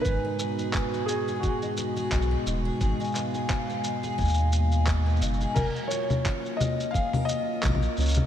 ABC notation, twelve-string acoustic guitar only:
X:1
M:4/4
L:1/16
Q:"Swing 16ths" 1/4=87
K:F#
V:1 name="Twelve-string acoustic guitar"
[G,,G] D B, G D B, D G [G,,G] D B, G D B, D G | [G,,G] D B, G D B, D G [G,,G] D B, G D B, D G | F,2 E2 C2 E2 G A E2 A2 C2 |]